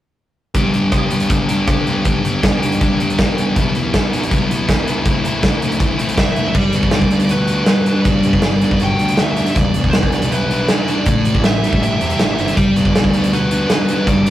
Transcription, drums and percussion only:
0.54 kick, closed hi-hat
0.74 closed hi-hat
0.92 kick, cross-stick, closed hi-hat
1.11 closed hi-hat
1.20 closed hi-hat
1.30 kick, closed hi-hat
1.49 closed hi-hat
1.67 kick, cross-stick, closed hi-hat
1.87 closed hi-hat
2.05 kick, closed hi-hat
2.25 closed hi-hat
2.43 kick, snare, closed hi-hat
2.63 closed hi-hat
2.72 closed hi-hat
2.81 kick, closed hi-hat
3.00 closed hi-hat
3.10 closed hi-hat
3.19 kick, snare, closed hi-hat
3.38 closed hi-hat
3.56 kick, closed hi-hat
3.75 closed hi-hat
3.94 kick, snare, closed hi-hat
4.13 closed hi-hat
4.23 closed hi-hat
4.31 kick, closed hi-hat
4.51 closed hi-hat
4.69 kick, snare, closed hi-hat
4.87 snare, closed hi-hat
5.05 kick, closed hi-hat
5.25 closed hi-hat
5.43 kick, snare, closed hi-hat
5.62 closed hi-hat
5.72 closed hi-hat
5.80 kick, closed hi-hat
5.99 closed hi-hat
6.09 closed hi-hat
6.18 kick, snare, closed hi-hat
6.36 closed hi-hat
6.54 kick, crash
6.73 closed hi-hat
6.83 kick
6.91 snare, closed hi-hat
7.02 kick
7.11 closed hi-hat
7.20 closed hi-hat
7.29 closed hi-hat
7.47 closed hi-hat
7.66 snare, closed hi-hat
7.86 closed hi-hat
8.05 kick, closed hi-hat
8.23 closed hi-hat
8.33 kick
8.42 snare, closed hi-hat
8.61 closed hi-hat
8.71 kick
8.80 closed hi-hat
8.99 closed hi-hat
9.08 closed hi-hat
9.17 snare, closed hi-hat
9.36 closed hi-hat
9.46 closed hi-hat
9.55 kick, closed hi-hat
9.74 closed hi-hat
9.84 kick
9.93 snare, closed hi-hat
10.03 kick
10.12 closed hi-hat
10.22 closed hi-hat
10.32 closed hi-hat
10.51 closed hi-hat
10.68 snare, closed hi-hat
10.88 closed hi-hat
11.06 kick, closed hi-hat
11.25 closed hi-hat
11.35 kick
11.44 snare, closed hi-hat
11.64 closed hi-hat
11.73 kick
11.83 closed hi-hat
12.01 closed hi-hat
12.10 closed hi-hat
12.19 snare, closed hi-hat
12.38 closed hi-hat
12.48 closed hi-hat
12.57 kick, closed hi-hat
12.76 closed hi-hat
12.85 kick
12.95 snare, closed hi-hat
13.04 kick
13.13 closed hi-hat
13.24 closed hi-hat
13.33 closed hi-hat
13.51 closed hi-hat
13.70 snare, closed hi-hat
13.88 closed hi-hat
14.07 kick, closed hi-hat
14.26 closed hi-hat

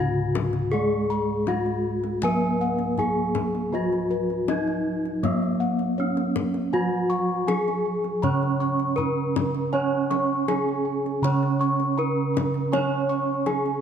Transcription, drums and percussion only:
0.35 kendang high, kendang low
0.53 kendang slap
1.47 kendang high
1.66 kendang slap
2.04 kendang slap
2.22 kendang low
2.79 kendang slap
2.98 kendang low
3.35 kendang high, kendang low
3.55 kendang slap
3.92 kendang slap
4.30 kendang slap
4.48 kendang high
4.67 kendang slap
5.05 kendang slap
5.24 kendang low
5.43 kendang slap
5.79 kendang slap
6.17 kendang slap
6.36 kendang high, kendang low
6.54 kendang slap
7.48 kendang high
7.68 kendang slap
8.04 kendang slap
8.23 kendang low
8.43 kendang slap
8.80 kendang slap
8.98 kendang low
9.36 kendang high, kendang low
9.54 kendang slap
10.11 kendang high
10.48 kendang high
10.69 kendang slap
11.06 kendang slap
11.24 kendang low
11.43 kendang slap
11.80 kendang slap
12.37 kendang high, kendang low
12.54 kendang slap
12.73 kendang high
13.46 kendang high
13.66 kendang slap

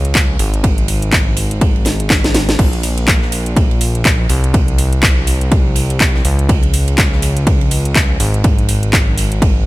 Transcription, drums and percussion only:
0.05 closed hi-hat
0.14 kick, snare, clap, closed hi-hat, ride
0.39 open hi-hat, ride
0.54 closed hi-hat
0.64 kick, closed hi-hat, ride
0.78 closed hi-hat
0.88 open hi-hat, ride
1.02 closed hi-hat
1.12 kick, snare, clap, closed hi-hat, ride
1.36 open hi-hat, ride
1.51 closed hi-hat
1.61 kick, closed hi-hat, ride
1.76 ride
1.85 snare, open hi-hat, ride
2.00 closed hi-hat
2.10 kick, snare, clap, closed hi-hat, ride
2.24 snare, closed hi-hat
2.34 snare, open hi-hat, ride
2.49 snare, closed hi-hat
2.59 kick, closed hi-hat, crash, ride
2.73 closed hi-hat, ride
2.83 open hi-hat, ride
2.97 closed hi-hat, ride
3.08 kick, snare, clap, closed hi-hat, ride
3.22 snare
3.32 open hi-hat, ride
3.46 closed hi-hat
3.56 kick, closed hi-hat, ride
3.71 ride
3.81 open hi-hat, ride
3.95 closed hi-hat
4.05 kick, snare, clap, closed hi-hat, ride
4.29 open hi-hat, ride
4.44 closed hi-hat
4.54 kick, closed hi-hat, ride
4.68 closed hi-hat
4.78 open hi-hat, ride
4.93 closed hi-hat
5.03 kick, snare, clap, closed hi-hat, ride
5.27 open hi-hat, ride
5.41 closed hi-hat
5.51 kick, closed hi-hat, ride
5.75 open hi-hat, ride
5.90 closed hi-hat, ride
6.00 kick, snare, clap, closed hi-hat, ride
6.15 snare
6.25 open hi-hat, ride
6.39 closed hi-hat
6.49 kick, closed hi-hat, ride
6.62 closed hi-hat, ride
6.74 open hi-hat, ride
6.88 closed hi-hat, ride
6.98 kick, snare, clap, closed hi-hat, ride
7.12 snare
7.22 open hi-hat, ride
7.37 closed hi-hat
7.47 kick, closed hi-hat, ride
7.61 ride
7.71 open hi-hat, ride
7.85 closed hi-hat
7.96 kick, snare, clap, closed hi-hat, ride
8.20 open hi-hat, ride
8.34 closed hi-hat
8.44 kick, closed hi-hat, ride
8.59 closed hi-hat
8.68 open hi-hat, ride
8.83 closed hi-hat
8.93 kick, snare, clap, closed hi-hat, ride
9.18 open hi-hat, ride
9.32 closed hi-hat
9.42 kick, closed hi-hat, ride

